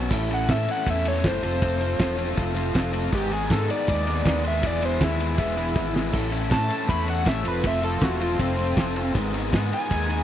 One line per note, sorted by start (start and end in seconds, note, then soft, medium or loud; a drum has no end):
0.00 0.10 F#3 medium
0.00 0.11 F#3 medium
0.00 0.11 B3 medium
0.00 0.11 C#4 medium
0.10 0.45 A1 loud
0.10 0.28 A2 loud
0.10 0.30 E3 loud
0.10 0.30 A3 loud
0.10 0.30 C#4 loud
0.10 0.31 E4 loud
0.10 0.32 A4 loud
0.10 kick loud
0.10 crash loud
0.30 0.47 A2 medium
0.30 0.49 E3 medium
0.30 0.49 A3 medium
0.30 0.49 C#4 loud
0.30 0.50 E4 medium
0.30 0.50 A4 medium
0.30 ride medium
0.34 0.50 F#5 medium
0.48 0.65 A2 medium
0.48 0.66 A2 medium
0.48 0.67 E3 loud
0.48 0.67 A3 loud
0.48 0.67 C#4 loud
0.48 0.68 E4 loud
0.48 0.69 A4 loud
0.48 0.68 E5 loud
0.48 kick loud
0.48 snare loud
0.48 ride loud
0.66 0.85 A2 medium
0.66 0.85 E3 medium
0.66 0.86 A3 medium
0.66 0.87 C#4 medium
0.66 0.87 E4 medium
0.66 0.88 A4 loud
0.66 ride medium
0.71 0.88 F#5 medium
0.86 1.20 E2 loud
0.86 1.04 A2 loud
0.86 1.05 E3 loud
0.86 1.06 A3 loud
0.86 1.06 C#4 loud
0.86 1.07 E4 loud
0.86 1.07 A4 loud
0.86 kick loud
0.86 ride loud
0.90 1.07 E5 medium
1.05 1.23 A2 medium
1.05 1.24 E3 medium
1.05 1.24 A3 medium
1.05 1.25 C#4 medium
1.05 1.25 E4 loud
1.05 1.26 A4 loud
1.05 1.25 C#5 medium
1.05 ride medium
1.24 1.41 F#1 loud
1.24 1.42 A2 loud
1.24 1.42 E3 loud
1.24 1.42 A3 loud
1.24 1.43 C#4 loud
1.24 1.43 E4 loud
1.24 1.43 A4 loud
1.24 2.35 C5 loud
1.24 kick loud
1.24 snare loud
1.24 ride loud
1.43 1.93 F1 loud
1.43 1.60 F3 loud
1.43 1.61 A3 medium
1.43 1.61 C4 loud
1.43 1.61 F4 loud
1.43 1.62 A4 loud
1.43 ride medium
1.61 1.79 F3 loud
1.61 1.80 A3 loud
1.61 1.80 C4 loud
1.61 1.80 F4 loud
1.61 1.81 A4 loud
1.61 kick loud
1.61 ride loud
1.80 1.98 F3 medium
1.80 1.98 A3 medium
1.80 1.98 C4 medium
1.80 1.99 F4 medium
1.80 2.00 A4 medium
1.80 ride medium
1.99 2.33 E1 loud
1.99 2.16 F3 medium
1.99 2.16 A3 loud
1.99 2.16 C4 medium
1.99 2.17 F4 loud
1.99 2.17 A4 loud
1.99 kick loud
1.99 snare loud
1.99 ride loud
2.17 2.34 F3 medium
2.17 2.36 A3 medium
2.17 2.34 C4 medium
2.17 2.35 F4 loud
2.17 2.36 A4 loud
2.17 ride medium
2.35 2.71 F1 loud
2.35 2.52 F3 loud
2.35 2.54 A3 loud
2.35 2.53 C4 loud
2.35 2.54 F4 loud
2.35 2.54 A4 loud
2.35 kick loud
2.35 ride loud
2.53 2.72 F3 medium
2.53 2.73 A3 medium
2.53 2.72 C4 medium
2.53 2.74 F4 medium
2.53 2.74 A4 medium
2.53 ride medium
2.74 3.09 F1 loud
2.74 2.91 F3 loud
2.74 2.92 A3 loud
2.74 2.92 C4 loud
2.74 2.92 F4 loud
2.74 2.93 A4 loud
2.74 kick loud
2.74 snare loud
2.74 ride loud
2.92 3.11 F3 medium
2.92 3.11 A3 medium
2.92 3.11 C4 medium
2.92 3.11 F4 loud
2.92 3.12 A4 medium
2.92 ride medium
3.11 3.46 G#1 medium
3.11 3.28 G#2 loud
3.11 3.29 D#3 loud
3.11 3.30 G#3 loud
3.11 3.30 B3 loud
3.11 3.31 D#4 loud
3.11 3.32 G4 loud
3.11 3.31 G#4 loud
3.11 kick loud
3.11 crash loud
3.29 3.47 G#2 medium
3.29 3.48 D#3 medium
3.29 3.49 G#3 medium
3.29 3.49 B3 loud
3.29 3.50 D#4 loud
3.29 3.50 G#4 medium
3.29 ride medium
3.33 3.51 G#4 medium
3.48 3.66 G#2 medium
3.48 3.67 G#2 medium
3.48 3.67 D#3 loud
3.48 3.69 G#3 loud
3.48 3.69 B3 loud
3.48 3.70 D#4 loud
3.48 3.70 G#4 loud
3.48 3.70 A4 loud
3.48 kick loud
3.48 snare loud
3.48 ride loud
3.67 3.85 G#2 loud
3.67 3.86 D#3 loud
3.67 3.87 G#3 loud
3.67 3.88 B3 medium
3.67 3.88 D#4 loud
3.67 3.89 G#4 loud
3.67 4.43 D5 medium
3.67 ride medium
3.87 4.22 D#2 loud
3.87 4.05 G#2 loud
3.87 4.05 D#3 loud
3.87 4.07 G#3 loud
3.87 4.07 B3 loud
3.87 4.07 D#4 loud
3.87 4.09 G#4 loud
3.87 kick loud
3.87 ride loud
4.06 4.24 G#2 medium
4.06 4.24 D#3 medium
4.06 4.26 G#3 medium
4.06 4.25 B3 medium
4.06 4.26 D#4 medium
4.06 4.27 G#4 loud
4.06 ride medium
4.25 4.59 D#2 medium
4.25 4.44 G#2 loud
4.25 4.44 D#3 loud
4.25 4.45 G#3 medium
4.25 4.45 B3 loud
4.25 4.46 D#4 loud
4.25 4.47 G#4 loud
4.25 kick loud
4.25 snare loud
4.25 ride loud
4.45 4.62 G#2 medium
4.45 4.63 D#3 medium
4.45 4.64 G#3 medium
4.45 4.63 B3 loud
4.45 4.63 D#4 medium
4.45 4.65 G#4 medium
4.45 4.64 E5 medium
4.45 ride medium
4.63 4.97 E1 loud
4.63 4.80 E2 loud
4.63 4.82 E3 loud
4.63 4.82 G#3 loud
4.63 4.82 B3 loud
4.63 4.83 E4 loud
4.63 4.84 G#4 loud
4.63 4.83 D5 loud
4.63 kick loud
4.63 ride loud
4.81 4.98 E2 loud
4.81 5.00 E3 medium
4.81 5.00 G#3 medium
4.81 5.00 B3 loud
4.81 5.01 E4 loud
4.81 5.02 G#4 loud
4.81 5.02 C5 medium
4.81 ride medium
4.99 5.35 D#2 loud
4.99 5.17 E2 loud
4.99 5.19 E3 loud
4.99 5.19 G#3 medium
4.99 5.19 B3 loud
4.99 5.20 E4 loud
4.99 5.20 G#4 loud
4.99 kick loud
4.99 snare loud
4.99 ride loud
5.04 5.21 E4 loud
5.18 5.35 E2 medium
5.18 5.37 E3 loud
5.18 5.37 G#3 medium
5.18 5.37 B3 loud
5.18 5.39 E4 loud
5.18 5.38 G#4 loud
5.18 ride medium
5.22 6.31 E4 loud
5.36 5.76 E1 loud
5.36 5.54 E2 loud
5.36 5.56 E3 loud
5.36 5.56 G#3 loud
5.36 5.57 B3 loud
5.36 5.58 E4 loud
5.36 5.57 G#4 loud
5.36 kick loud
5.36 ride loud
5.56 5.74 E2 medium
5.56 5.75 E3 medium
5.56 5.74 G#3 medium
5.56 5.75 B3 loud
5.56 5.76 E4 medium
5.56 5.76 G#4 medium
5.56 ride medium
5.75 6.10 G#1 medium
5.75 5.91 E2 loud
5.75 5.93 E3 loud
5.75 5.93 G#3 loud
5.75 5.93 B3 loud
5.75 5.95 E4 loud
5.75 5.94 G#4 loud
5.75 kick loud
5.93 6.12 E2 medium
5.93 6.10 E3 medium
5.93 6.12 G#3 medium
5.93 6.11 B3 medium
5.93 6.13 E4 loud
5.93 6.13 G#4 loud
5.93 snare loud
6.11 6.47 A1 loud
6.11 6.29 A2 medium
6.11 6.31 E3 loud
6.11 6.31 A3 loud
6.11 6.30 C#4 medium
6.11 6.31 E4 loud
6.11 6.32 A4 loud
6.11 9.12 A4 medium
6.11 7.45 E5 medium
6.11 7.45 A5 medium
6.11 7.45 C#6 medium
6.11 kick loud
6.11 crash loud
6.30 6.47 A2 medium
6.30 6.50 E3 medium
6.30 6.49 A3 medium
6.30 6.48 C#4 loud
6.30 6.49 E4 loud
6.30 6.51 A4 loud
6.30 ride medium
6.48 6.67 A2 loud
6.48 6.68 A2 medium
6.48 6.68 E3 medium
6.48 6.69 A3 medium
6.48 6.69 C#4 medium
6.48 6.69 E4 loud
6.48 6.70 A4 loud
6.48 6.88 A5 loud
6.48 kick loud
6.48 snare loud
6.48 ride loud
6.68 6.86 A2 medium
6.68 6.87 E3 medium
6.68 6.87 A3 loud
6.68 6.87 C#4 medium
6.68 6.88 E4 medium
6.68 6.88 A4 medium
6.68 ride medium
6.88 7.23 E2 loud
6.88 7.04 A2 loud
6.88 7.05 E3 loud
6.88 7.05 A3 loud
6.88 7.05 C#4 loud
6.88 7.06 E4 loud
6.88 7.06 A4 loud
6.88 7.08 B5 medium
6.88 kick loud
6.88 ride loud
7.05 7.23 A2 medium
7.05 7.24 E3 medium
7.05 7.23 A3 medium
7.05 7.24 C#4 medium
7.05 7.24 E4 loud
7.05 7.25 A4 medium
7.05 ride medium
7.10 7.27 F#5 medium
7.24 7.44 A1 loud
7.24 7.43 A2 loud
7.24 7.43 E3 loud
7.24 7.42 A3 loud
7.24 7.43 C#4 loud
7.24 7.43 E4 loud
7.24 7.43 A4 loud
7.24 kick loud
7.24 snare loud
7.24 ride loud
7.28 7.46 E5 loud
7.43 7.96 F1 loud
7.43 7.61 F3 loud
7.43 7.62 A3 loud
7.43 7.61 C4 loud
7.43 7.62 F4 loud
7.43 7.62 A4 loud
7.43 9.13 F5 medium
7.43 9.13 C6 medium
7.43 9.13 E6 medium
7.43 ride medium
7.48 7.65 B4 loud
7.62 7.80 F3 loud
7.62 7.81 A3 loud
7.62 7.81 C4 loud
7.62 7.81 F4 loud
7.62 7.82 A4 loud
7.62 kick loud
7.62 ride loud
7.67 7.84 E5 loud
7.81 7.98 F3 medium
7.81 8.00 A3 medium
7.81 7.99 C4 medium
7.81 8.00 F4 medium
7.81 8.00 A4 loud
7.81 8.02 A4 loud
7.81 ride medium
7.99 8.36 E1 medium
7.99 8.18 F3 loud
7.99 8.19 A3 loud
7.99 8.19 C4 loud
7.99 8.19 F4 loud
7.99 8.20 A4 loud
7.99 kick loud
7.99 snare loud
7.99 ride loud
8.04 8.21 F#4 loud
8.19 8.37 F3 medium
8.19 8.37 A3 medium
8.19 8.38 C4 loud
8.19 8.38 F4 loud
8.19 8.40 F4 medium
8.19 8.39 A4 loud
8.19 ride medium
8.38 8.74 F1 loud
8.38 8.55 F3 medium
8.38 8.57 A3 loud
8.38 8.56 C4 loud
8.38 9.13 C4 loud
8.38 8.56 F4 loud
8.38 8.57 A4 loud
8.38 kick loud
8.38 ride loud
8.57 8.75 F3 medium
8.57 8.76 A3 medium
8.57 8.75 C4 medium
8.57 8.76 F4 medium
8.57 8.76 A4 medium
8.57 ride medium
8.76 9.11 F1 loud
8.76 8.94 F3 loud
8.76 8.96 A3 loud
8.76 8.94 C4 loud
8.76 8.95 F4 loud
8.76 8.95 A4 loud
8.76 kick loud
8.76 snare loud
8.76 ride loud
8.95 9.14 F3 medium
8.95 9.15 A3 medium
8.95 9.14 C4 medium
8.95 9.14 F4 medium
8.95 9.14 A4 loud
8.95 ride medium
9.13 9.49 G#1 medium
9.13 9.32 G#2 loud
9.13 9.33 D#3 loud
9.13 9.34 G#3 loud
9.13 9.34 B3 loud
9.13 9.35 D#4 loud
9.13 9.35 G#4 loud
9.13 10.23 G#4 medium
9.13 10.23 F#5 medium
9.13 10.23 B5 medium
9.13 kick loud
9.13 crash loud
9.17 10.23 D#6 medium
9.33 9.51 G#2 loud
9.33 9.51 D#3 medium
9.33 9.52 G#3 loud
9.33 9.53 B3 medium
9.33 9.54 D#4 loud
9.33 9.54 G#4 loud
9.33 ride medium
9.52 9.69 G#2 medium
9.52 9.70 G#2 medium
9.52 9.70 D#3 loud
9.52 9.71 G#3 medium
9.52 9.72 B3 loud
9.52 9.72 D#4 loud
9.52 9.73 G#4 loud
9.52 kick loud
9.52 snare loud
9.52 ride loud
9.70 9.88 G#2 medium
9.70 9.89 D#3 medium
9.70 9.89 G#3 medium
9.70 9.90 B3 medium
9.70 9.90 D#4 loud
9.70 9.91 G#4 medium
9.70 10.23 G#5 loud
9.70 ride medium
9.89 10.23 D#2 loud
9.89 10.06 G#2 loud
9.89 10.07 D#3 loud
9.89 10.08 G#3 loud
9.89 10.09 B3 loud
9.89 10.09 D#4 loud
9.89 10.10 G#4 loud
9.89 kick loud
9.89 ride loud
10.07 10.23 G#2 medium
10.07 10.23 D#3 medium
10.07 10.23 G#3 loud
10.07 10.23 B3 medium
10.07 10.23 D#4 medium
10.07 10.23 G#4 medium
10.07 ride medium